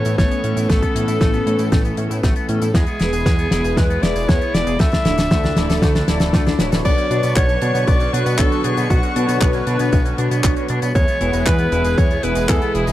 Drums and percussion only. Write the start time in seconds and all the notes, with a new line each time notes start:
0.05 closed hi-hat, tambourine
0.18 kick, snare, closed hi-hat, tambourine
0.31 closed hi-hat, tambourine
0.44 closed hi-hat
0.57 closed hi-hat, tambourine
0.69 kick, snare, closed hi-hat, tambourine
0.82 kick, closed hi-hat, tambourine
0.96 closed hi-hat
1.08 closed hi-hat, tambourine
1.21 kick, snare, closed hi-hat, tambourine
1.33 closed hi-hat, tambourine
1.47 closed hi-hat
1.59 closed hi-hat, tambourine
1.72 kick, snare, closed hi-hat, tambourine
1.85 closed hi-hat, tambourine
1.97 closed hi-hat
2.11 closed hi-hat, tambourine
2.23 kick, snare, closed hi-hat, tambourine
2.36 closed hi-hat, tambourine
2.49 closed hi-hat
2.62 closed hi-hat, tambourine
2.74 kick, snare, closed hi-hat, tambourine
2.86 closed hi-hat, tambourine
3.00 snare, closed hi-hat
3.13 closed hi-hat, tambourine
3.26 kick, snare, closed hi-hat, tambourine
3.39 closed hi-hat, tambourine
3.51 snare, closed hi-hat
3.64 closed hi-hat, tambourine
3.77 kick, snare, closed hi-hat, tambourine
3.90 closed hi-hat, tambourine
4.03 snare, closed hi-hat
4.16 closed hi-hat, tambourine
4.29 kick, snare, closed hi-hat, tambourine
4.41 closed hi-hat, tambourine
4.54 snare, closed hi-hat
4.67 closed hi-hat, tambourine
4.79 kick, snare, closed hi-hat, tambourine
4.92 kick, snare, closed hi-hat, tambourine
5.05 snare, closed hi-hat
5.18 snare, closed hi-hat, tambourine
5.30 kick, snare, closed hi-hat, tambourine
5.43 snare, closed hi-hat, tambourine
5.56 snare, closed hi-hat
5.70 snare, closed hi-hat, tambourine
5.82 kick, snare, closed hi-hat, tambourine
5.95 snare, closed hi-hat, tambourine
6.08 snare, closed hi-hat
6.20 snare, closed hi-hat, tambourine
6.33 kick, snare, closed hi-hat, tambourine
6.46 snare, closed hi-hat, tambourine
6.59 snare, closed hi-hat
6.72 snare, closed hi-hat, tambourine
6.85 kick, closed hi-hat, crash, tambourine
6.98 closed hi-hat, tambourine
7.11 closed hi-hat
7.23 closed hi-hat, tambourine
7.36 kick, clap, closed hi-hat, tambourine
7.48 closed hi-hat, tambourine
7.62 closed hi-hat
7.75 closed hi-hat, tambourine
7.87 kick, closed hi-hat, tambourine
8.00 closed hi-hat, tambourine
8.14 closed hi-hat
8.26 closed hi-hat, tambourine
8.38 kick, clap, closed hi-hat, tambourine
8.52 closed hi-hat, tambourine
8.64 closed hi-hat
8.77 closed hi-hat, tambourine
8.90 kick, closed hi-hat, tambourine
9.03 closed hi-hat, tambourine
9.16 closed hi-hat
9.29 closed hi-hat, tambourine
9.41 kick, clap, closed hi-hat, tambourine
9.53 closed hi-hat, tambourine
9.67 closed hi-hat
9.79 closed hi-hat, tambourine
9.93 kick, closed hi-hat, tambourine
10.05 closed hi-hat, tambourine
10.18 closed hi-hat
10.31 closed hi-hat, tambourine
10.44 kick, clap, closed hi-hat, tambourine
10.57 closed hi-hat, tambourine
10.68 closed hi-hat
10.82 closed hi-hat, tambourine
10.95 kick, closed hi-hat, tambourine
11.08 closed hi-hat, tambourine
11.21 closed hi-hat
11.33 closed hi-hat, tambourine
11.46 kick, clap, closed hi-hat, tambourine
11.59 closed hi-hat, tambourine
11.72 closed hi-hat
11.84 closed hi-hat, tambourine
11.98 kick, closed hi-hat, tambourine
12.11 closed hi-hat, tambourine
12.23 closed hi-hat
12.35 closed hi-hat, tambourine
12.49 kick, clap, closed hi-hat, tambourine
12.62 closed hi-hat, tambourine
12.75 closed hi-hat
12.87 closed hi-hat, tambourine